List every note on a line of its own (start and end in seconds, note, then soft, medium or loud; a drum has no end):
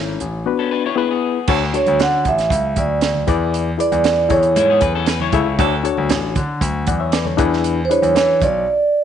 0.00 0.12 G#1 medium
0.00 0.24 C#4 medium
0.00 0.24 E4 medium
0.00 0.25 A4 medium
0.00 0.25 C#5 medium
0.20 0.42 A1 medium
0.20 closed hi-hat medium
0.46 0.87 B3 medium
0.46 0.87 D4 medium
0.46 0.87 F#4 medium
0.46 0.88 B4 medium
0.59 0.71 C#4 medium
0.59 0.71 A4 medium
0.71 0.84 D4 medium
0.71 0.84 B4 medium
0.86 0.97 E4 medium
0.86 0.97 C#5 medium
0.96 1.37 B3 medium
0.96 1.10 D4 medium
0.96 1.38 E4 medium
0.96 1.38 G#4 medium
0.96 1.10 B4 medium
0.96 1.39 B4 loud
1.11 1.47 B3 soft
1.11 1.47 G#4 medium
1.47 1.70 D2 loud
1.47 1.64 D4 medium
1.47 1.62 D4 medium
1.47 1.64 F#4 medium
1.47 1.62 F#4 medium
1.47 1.64 A4 loud
1.47 1.63 A4 medium
1.47 1.63 C#5 medium
1.47 kick loud
1.47 crash medium
1.47 muted conga soft
1.73 2.29 D4 medium
1.73 2.30 F#4 medium
1.73 2.30 A4 medium
1.73 2.30 C#5 medium
1.73 2.01 C#5 medium
1.73 closed hi-hat medium
1.73 muted conga soft
1.86 1.98 D2 loud
1.86 closed hi-hat soft
1.86 high conga medium
1.99 2.22 D3 medium
1.99 2.28 F#5 medium
1.99 snare loud
1.99 closed hi-hat medium
2.25 2.47 A1 medium
2.25 2.80 E5 medium
2.25 kick medium
2.25 closed hi-hat medium
2.25 low conga medium
2.38 snare soft
2.38 closed hi-hat medium
2.50 2.72 C#2 medium
2.50 kick medium
2.50 closed hi-hat loud
2.50 high conga medium
2.76 3.21 D2 medium
2.76 3.26 D5 medium
2.76 kick medium
2.76 closed hi-hat medium
2.76 high conga medium
3.01 snare medium
3.01 closed hi-hat medium
3.01 muted conga soft
3.15 high conga medium
3.15 low conga medium
3.27 3.72 E2 loud
3.27 3.69 E4 medium
3.27 3.69 G#4 medium
3.27 3.69 B4 medium
3.27 3.70 D5 medium
3.27 kick loud
3.27 closed hi-hat medium
3.27 muted conga soft
3.27 low conga medium
3.54 closed hi-hat medium
3.77 4.28 E4 medium
3.77 4.29 G#4 medium
3.77 4.31 B4 medium
3.77 4.31 D5 medium
3.77 4.33 D5 loud
3.77 closed hi-hat medium
3.77 muted conga soft
3.92 4.25 E2 medium
3.92 closed hi-hat soft
3.92 high conga medium
4.04 snare loud
4.04 closed hi-hat medium
4.29 4.56 E2 medium
4.29 5.12 E4 medium
4.29 5.13 G#4 medium
4.29 5.13 A4 medium
4.29 5.13 C#5 medium
4.29 4.79 C#5 loud
4.29 kick medium
4.29 closed hi-hat medium
4.29 low conga medium
4.43 closed hi-hat medium
4.56 4.78 G#2 loud
4.56 4.69 G#3 medium
4.56 4.69 E4 medium
4.56 closed hi-hat loud
4.56 muted conga soft
4.56 high conga medium
4.70 4.82 B3 medium
4.70 4.81 G#4 medium
4.81 5.26 E2 medium
4.81 4.94 B4 medium
4.81 kick medium
4.81 closed hi-hat medium
4.81 high conga medium
4.95 5.08 C#4 medium
4.95 5.07 A4 medium
5.06 5.21 B4 medium
5.06 snare medium
5.06 closed hi-hat medium
5.20 5.58 E4 medium
5.20 5.58 C#5 medium
5.20 high conga medium
5.20 low conga medium
5.32 5.55 C#2 medium
5.32 5.47 E4 medium
5.32 5.47 G#4 medium
5.32 5.48 A4 medium
5.32 5.48 E5 loud
5.32 kick loud
5.32 closed hi-hat medium
5.32 muted conga soft
5.32 low conga medium
5.59 5.81 D2 loud
5.59 5.73 D4 medium
5.59 5.76 D4 medium
5.59 5.73 F#4 medium
5.59 5.76 F#4 medium
5.59 5.76 A4 loud
5.59 5.74 A4 medium
5.59 5.74 C#5 medium
5.59 kick loud
5.59 closed hi-hat medium
5.59 muted conga soft
5.83 6.40 D4 medium
5.83 6.40 F#4 medium
5.83 6.40 A4 medium
5.83 6.41 C#5 medium
5.83 closed hi-hat medium
5.97 6.09 D2 medium
5.97 high conga medium
6.10 6.32 A1 loud
6.10 snare loud
6.10 closed hi-hat medium
6.10 muted conga soft
6.35 6.62 D3 medium
6.35 kick medium
6.35 closed hi-hat medium
6.35 muted conga soft
6.35 low conga medium
6.61 6.83 D2 loud
6.61 kick medium
6.61 closed hi-hat loud
6.61 high conga medium
6.87 7.31 E2 medium
6.87 7.00 D5 soft
6.87 7.00 F#5 medium
6.87 kick medium
6.87 closed hi-hat medium
6.87 muted conga soft
6.87 high conga medium
7.00 7.13 C#5 medium
7.00 7.12 E5 medium
7.12 7.25 B4 medium
7.12 7.25 D5 medium
7.12 snare medium
7.12 closed hi-hat medium
7.12 muted conga soft
7.25 7.50 A4 soft
7.25 7.50 C#5 medium
7.25 high conga medium
7.25 low conga medium
7.37 7.83 E2 loud
7.37 7.79 D4 loud
7.37 7.79 E4 medium
7.37 7.79 G#4 medium
7.37 7.80 B4 loud
7.37 kick loud
7.37 closed hi-hat medium
7.37 muted conga soft
7.37 low conga medium
7.53 snare soft
7.64 closed hi-hat medium
7.64 muted conga soft
7.85 7.91 C5 medium
7.90 8.45 D4 medium
7.90 8.45 E4 medium
7.90 8.46 G#4 medium
7.90 8.46 B4 medium
7.90 8.43 C#5 loud
7.90 closed hi-hat medium
7.90 muted conga soft
8.02 8.13 E2 medium
8.02 closed hi-hat soft
8.02 high conga medium
8.15 8.37 E3 loud
8.15 snare loud
8.15 closed hi-hat medium
8.15 muted conga soft
8.40 8.63 B1 medium
8.40 9.04 D5 loud
8.40 kick medium
8.40 closed hi-hat medium
8.40 muted conga soft
8.40 low conga medium